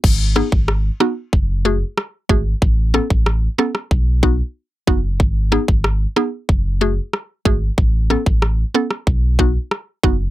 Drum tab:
CC |x---------------|----------------|----------------|----------------|
SD |--r-r-r-----r---|--r-r-rr--------|--r-r-r-----r---|--r-r--r----r---|
BD |o--o----o-----o-|o--o----o-o---o-|o--o----o-----o-|o--o----o-o---o-|